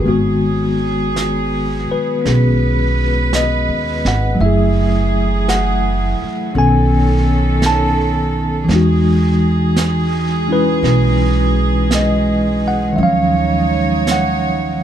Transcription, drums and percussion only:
0.06 brush sweep
1.16 brush sweep, snare, hi-hat pedal
2.25 brush sweep, snare
3.33 brush sweep, snare, hi-hat pedal
4.05 snare
4.40 brush sweep
5.49 brush sweep, snare, hi-hat pedal
6.55 brush sweep
7.62 brush sweep, snare, hi-hat pedal
8.69 brush sweep, snare
9.76 brush sweep, snare, hi-hat pedal
10.84 brush sweep, snare
11.91 brush sweep, snare, hi-hat pedal
12.98 brush sweep
14.07 brush sweep, snare, hi-hat pedal

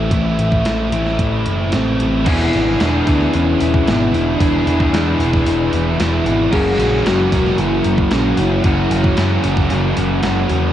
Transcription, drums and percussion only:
0.11 kick, closed hi-hat
0.39 closed hi-hat
0.52 kick
0.65 snare, closed hi-hat
0.92 closed hi-hat
1.07 snare
1.19 kick, closed hi-hat
1.46 closed hi-hat
1.72 snare, closed hi-hat
2.00 closed hi-hat
2.26 kick, open hi-hat, crash
2.53 open hi-hat
2.80 snare, open hi-hat
3.07 kick, open hi-hat
3.21 snare
3.34 open hi-hat
3.60 open hi-hat
3.74 kick
3.88 snare, open hi-hat
4.14 open hi-hat
4.41 kick, open hi-hat
4.67 open hi-hat
4.80 kick
4.94 snare, open hi-hat
5.20 open hi-hat
5.33 kick, snare
5.46 open hi-hat
5.73 open hi-hat
6.00 snare, open hi-hat
6.26 open hi-hat
6.52 kick, crash
6.79 open hi-hat
7.06 snare, open hi-hat
7.32 kick, open hi-hat
7.46 snare
7.58 open hi-hat
7.84 open hi-hat
7.98 kick
8.11 snare, open hi-hat
8.38 open hi-hat
8.64 kick, open hi-hat
8.91 open hi-hat
9.04 kick
9.17 snare, open hi-hat
9.44 open hi-hat
9.57 kick, snare
9.70 open hi-hat
9.97 open hi-hat
10.23 snare, open hi-hat
10.50 open hi-hat

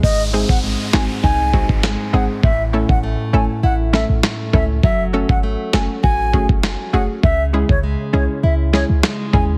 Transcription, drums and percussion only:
0.03 kick
0.49 kick
0.93 snare, clap
1.24 kick
1.54 kick
1.69 kick
1.83 snare, clap
2.43 kick
2.89 kick
3.94 snare
4.23 snare, clap
4.53 kick
4.83 kick
5.29 kick
5.73 snare, clap
6.04 kick
6.34 kick
6.49 kick
6.63 snare, clap
7.23 kick
7.69 kick
8.74 snare
9.03 cross-stick, snare, clap
9.33 kick

